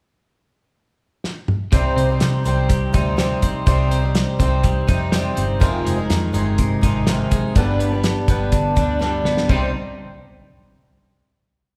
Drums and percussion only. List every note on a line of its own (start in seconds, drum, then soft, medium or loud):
1.24 snare medium
1.48 mid tom medium
1.72 kick loud
1.72 closed hi-hat medium
1.98 closed hi-hat medium
2.20 snare loud
2.20 closed hi-hat medium
2.45 closed hi-hat medium
2.69 kick medium
2.69 closed hi-hat medium
2.94 kick medium
2.94 closed hi-hat medium
3.18 snare loud
3.18 closed hi-hat medium
3.42 kick medium
3.42 closed hi-hat medium
3.67 kick loud
3.67 closed hi-hat medium
3.91 closed hi-hat medium
4.15 snare loud
4.15 closed hi-hat medium
4.40 kick medium
4.40 closed hi-hat medium
4.63 kick medium
4.63 closed hi-hat medium
4.88 kick medium
4.88 closed hi-hat medium
5.12 snare loud
5.12 closed hi-hat medium
5.37 closed hi-hat medium
5.61 kick loud
5.61 closed hi-hat medium
5.87 closed hi-hat medium
6.10 snare loud
6.10 closed hi-hat medium
6.34 closed hi-hat medium
6.58 kick medium
6.58 closed hi-hat medium
6.83 kick medium
6.83 closed hi-hat medium
7.07 snare loud
7.07 closed hi-hat medium
7.31 kick medium
7.31 closed hi-hat medium
7.55 kick loud
7.55 closed hi-hat medium
7.80 closed hi-hat medium
8.04 snare loud
8.04 closed hi-hat medium
8.28 kick medium
8.28 closed hi-hat medium
8.52 kick medium
8.52 closed hi-hat medium
8.76 kick medium
8.76 closed hi-hat medium
9.01 snare medium
9.25 snare medium
9.37 snare medium
9.49 kick medium
9.49 china medium